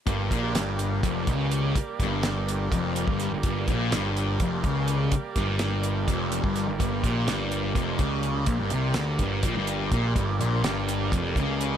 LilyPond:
<<
  \new Staff \with { instrumentName = "Transistor combo organ" } { \time 7/8 \key g \minor \tempo 4 = 125 <g bes d''>2.~ <g bes d''>8~ | <g bes d''>2.~ <g bes d''>8~ | <g bes d''>2.~ <g bes d''>8~ | <g bes d''>2.~ <g bes d''>8~ |
<g bes d''>2.~ <g bes d''>8~ | <g bes d''>2.~ <g bes d''>8~ | <g bes d''>2.~ <g bes d''>8 | }
  \new Staff \with { instrumentName = "Distorted electric guitar" } { \clef bass \time 7/8 \key g \minor g,8 bes,8 g,4 f,8 cis4 | r8 g,4. f,8. g,8 g,16 | g,8 bes,8 g,4 f,8 cis4 | r8 g,4. f,8. g,8 g,16 |
g,8 bes,8 g,4 f,8 cis4 | bes,16 g,16 c8 d8 g,8 bes,16 g,8. bes,8 | g,8 bes,8 g,4 f,8 cis4 | }
  \new Staff \with { instrumentName = "Picked electric bass" } { \clef bass \time 7/8 \key g \minor g,,8 bes,,8 g,,4 f,,8 cis,4 | r8 g,,4. f,,8. g,,8 g,,16 | g,,8 bes,,8 g,,4 f,,8 cis,4 | r8 g,,4. f,,8. g,,8 g,,16 |
g,,8 bes,,8 g,,4 f,,8 cis,4 | bes,,16 g,,16 c,8 d,8 g,,8 bes,,16 g,,8. bes,,8 | g,,8 bes,,8 g,,4 f,,8 cis,4 | }
  \new DrumStaff \with { instrumentName = "Drums" } \drummode { \time 7/8 <hh bd>8 <hh bd>8 <hh sn>8 hh8 <hh bd>8 <hh bd>8 hh8 | <hh bd>8 <hh bd>8 <hh sn>8 hh8 <hh bd>8 hh16 bd16 <hh sn>8 | <hh bd>8 <hh bd>8 <hh sn>8 hh8 <hh bd>8 <hh bd>8 hh8 | <hh bd>8 <hh bd sn>8 <hh sn>8 hh8 <hh bd sn>8 hh16 bd16 <hh sn>8 |
<hh bd>8 <hh bd>8 <hh sn>8 hh8 <hh bd>8 <hh bd>8 hh8 | <hh bd>8 hh8 <hh sn>8 <hh bd>8 <hh bd>8 hh8 <hh bd>8 | <hh bd>8 hh8 <hh sn>8 hh8 <hh bd>8 <hh bd>8 hh8 | }
>>